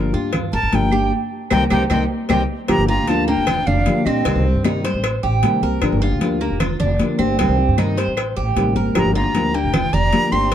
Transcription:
Already playing: G1 D3 F3 A#3 D4 G4 A#4
0.13 G2 A#3 D4 F4 G4
0.33 muted nylon-string guitar stroke, cowbell, high conga, low conga, claves
0.53 G1 A#4 A5, high conga
0.63 G1
0.72 G1 D3 F3 A#3 D4 G4 G5, cowbell, high conga
0.92 A#3 D4 G4, high conga, claves
1.50 C2 D#3 G3 C4 D#4 G4 G5, cowbell, high conga, claves
1.70 C2 D#3 G3 C4 D#4 G4 G5, cowbell, high conga, claves
1.90 C2 D#3 G3 C4 D#4 G4 G5, cowbell, high conga, claves
2.29 C2 D#3 G3 C4 D#4 G4 G5, cowbell, high conga, claves
2.68 G1 D3 F3 A#3 D4 G4 A#5, cowbell, high conga, claves
2.79 G1
2.88 A#3 D4 F4 G4 A#5, high conga
2.98 D2
3.07 D3 F3 A#3 D4 F4 G4 A5, cowbell, high conga
3.28 A#3 D4 G4 G5
3.37 F1
3.47 F4, muted nylon-string guitar stroke, cowbell, high conga, low conga, claves
3.67 F1 D4 F5, high conga, low conga
3.86 D3 F3 A#3 D4 G4, cowbell, high conga
4.06 A#1 A#3 C4 D4 G4 D#5, high conga, claves
4.25 C2 C3 D#3 G3 C4 G4, cowbell
4.35 C2
4.44 G3 C4 G4
4.55 G2
4.64 C3 D#3 G3 C4 D#4 G4, cowbell, high conga, claves
4.84 G3 C4 G4 C5, cowbell
4.94 A1
5.04 muted nylon-string guitar stroke, cowbell, high conga, claves
5.23 A1 G4, high conga
5.43 C3 D#3 G3 C4 G4, cowbell, high conga
5.62 C2 G3 C4 G4 A#4, high conga
5.82 G1 D3 F3 A#3 D4 G4, cowbell, claves
5.92 G1
6.01 A#3 D4 F4 G4, high conga
6.11 D2
6.21 D3 F3 A#3 D4 G4, cowbell, high conga
6.41 A#3 D4 G4
6.50 F1
6.60 F4, muted nylon-string guitar stroke, cowbell, high conga, low conga, claves
6.80 F1 D4, high conga, low conga
6.99 D3 F3 A#3 D4 G4, cowbell, high conga
7.19 G1 A#3 C4 D4 G4, high conga, claves
7.38 C2 C3 D#3 G3 C4 G4, cowbell, high conga
7.49 C2
7.58 G3 C4 G4, high conga
7.69 G2
7.77 C3 D#3 G3 C4 D#4 G4, cowbell, high conga, claves
7.97 G3 C4 G4 C5, cowbell
8.07 A1
8.17 muted nylon-string guitar stroke, cowbell, high conga, claves
8.36 A1 G4, high conga
8.56 A1 C3 D#3 G3 C4 G4, cowbell, high conga
8.76 G1 G3 C4 G4 A#4, high conga
8.95 G1 D3 F3 A#3 D4 G4 A#5, cowbell, claves
9.05 G1
9.15 A#3 D4 F4 G4 A#5
9.24 D2
9.34 D3 F3 A#3 D4 G4, cowbell, high conga
9.54 A#3 D4 G4 G5
9.64 F1
9.73 F4, muted nylon-string guitar stroke, cowbell, high conga, low conga, claves
9.93 F1 D4 G4 A#5, high conga, low conga
10.12 D3 F3 A#3 D4 G4, cowbell, high conga
10.32 G1 A#3 C4 D4 G4 C6, high conga, claves

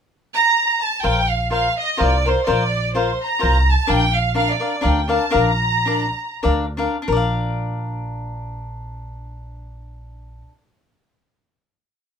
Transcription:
0.36 A#5
0.81 A5
1.03 A#1 F4 A#4 C5 F5 G5
1.30 F5
1.50 F4 A#4 C5 F5
1.79 D#5
1.97 C2 F4 A#4 C5 D5 F5
2.26 F4 A#4 C5 F5
2.47 A#1 F4 A#4 C5 D5 F5
2.95 F4 A#4 C5 F5
3.22 A#5
3.39 F4 A#4 C5 F5
3.43 C2
3.70 A5
3.87 A#1 D4 A#4 D5 F5 G5
4.14 F5
4.34 D4 A#4 D5 F5
4.49 D5
4.60 D4 A#4 D5 F5
4.81 D2 D4 A#4 D5 F5 G5
5.08 D4 A#4 D5 F5 A5
5.30 D4 A#4 D5 F5
5.34 A#1 A#5
5.85 D4 A#4 D5 F5
6.43 D2 D4 A#4 D5 F5
6.77 D4 A#4 D5 F5
7.02 D4
7.08 A#1 A#4
7.12 D5
7.16 F5

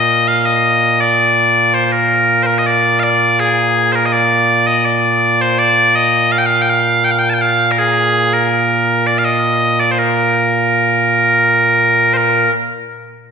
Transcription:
Already playing: A#2 A#3 D#5
0.28 F5
0.39 F5
0.45 D#5
1.01 D5
1.74 C5
1.85 C5
1.92 A#4
2.43 A#4 C5
2.58 D#5
2.67 D5
3.00 D5 F5
3.40 G#4
3.92 A#4 C5
4.06 D#5
4.13 D5
4.67 D#5
4.78 D#5
4.85 D5
5.41 C5
5.59 D5
5.96 D#5
6.32 F5
6.38 G5
6.46 F5
6.62 G5
6.69 F5
7.04 G5
7.11 F5
7.19 G5
7.30 A5
7.34 G5
7.41 F5
7.72 A#4
7.78 G#4
8.33 A#4
9.07 D5
9.19 F5
9.25 D#5
9.80 D5
9.91 C5
9.99 A#4
12.14 A#4 C5

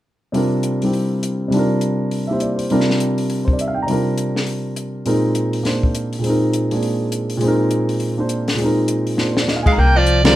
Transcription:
0.32 C3 G3 D4 F4, open hi-hat
0.37 A#4
0.63 closed hi-hat
0.82 G3 C4 E4 G4, open hi-hat
0.93 open hi-hat
1.23 closed hi-hat
1.48 C3 G3
1.52 D4, open hi-hat
1.57 F4 A#4
1.81 closed hi-hat
2.11 open hi-hat
2.27 A#3 E4 G4 E5
2.33 C5
2.40 D5, closed hi-hat
2.57 C5, open hi-hat
2.70 C3 G3 D4 F4 A#4, open hi-hat
2.80 snare
2.90 snare
3.00 closed hi-hat
3.18 open hi-hat
3.30 open hi-hat
3.45 C5, kick
3.53 D5
3.59 E5, closed hi-hat
3.68 F5
3.74 G5
3.82 A#5
3.86 C3 G3 D4, open hi-hat
3.91 F4 A#4
4.18 closed hi-hat
4.36 snare
4.47 open hi-hat
4.76 closed hi-hat
5.05 A#2 G#3 C4 D#4 A#4, open hi-hat
5.35 closed hi-hat
5.53 open hi-hat
5.63 A#3 D4 F4 C5, snare, open hi-hat
5.83 kick
5.95 closed hi-hat
6.13 open hi-hat
6.19 A#2 G#3
6.24 C4 D#4, open hi-hat
6.30 A#4
6.54 closed hi-hat
6.71 G#3 A#3 D4 G#4, open hi-hat
6.83 open hi-hat
7.12 closed hi-hat
7.30 open hi-hat
7.37 A#2 G#3, open hi-hat
7.42 C4 D#4
7.48 A#4
7.71 closed hi-hat
7.89 open hi-hat
8.00 open hi-hat
8.17 A#3 D4 F4 C5
8.29 closed hi-hat
8.48 snare, open hi-hat
8.54 A#2 G#3, open hi-hat
8.60 C4 D#4
8.65 A#4
8.88 closed hi-hat
9.07 open hi-hat
9.17 A#3 D4 F4 C5, snare
9.33 C5, snare
9.42 D5
9.48 D#5, snare
9.56 F5
9.63 G#3 G#5, kick, crash
9.67 F5
9.72 G#3 F5 A#5
9.77 C2 A#3 G5
9.96 F3 D5
10.07 closed hi-hat
10.24 D3 F3 G3 C4 F4 A#4 D5, snare, ride

